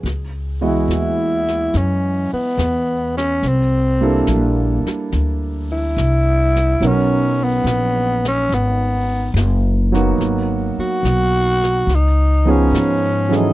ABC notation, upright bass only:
X:1
M:4/4
L:1/8
Q:"Swing" 1/4=71
K:C#m
V:1 name="Upright bass" clef=bass
C,,2 D,,2 F,, z E,,2 | =C,,2 _B,,, z =D,,2 C,,2 | B,,,2 ^A,,,2 G,,,2 F,,,2 | G,,, z B,,,2 C,,2 G,,2 |]